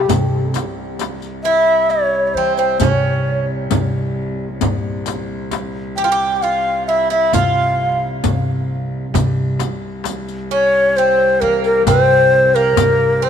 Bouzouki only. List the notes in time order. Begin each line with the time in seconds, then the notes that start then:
1.45 E4
2.37 C4
2.59 C4
2.80 C#4
5.98 G4
6.04 F4
6.12 G4
6.43 F4
6.89 E4
7.10 E4
7.34 F4
10.51 C#4
10.98 C4
11.41 A#3
11.88 C4
12.56 A#3
13.22 C4